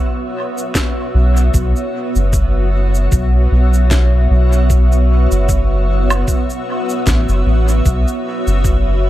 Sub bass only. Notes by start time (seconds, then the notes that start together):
1.14 B1
1.54 B1
2.16 F#1
3.12 B1
3.52 B1
4.30 B1
5.32 F#1
7.07 A1
7.29 F#1
7.46 A1
7.86 B1
8.47 F#1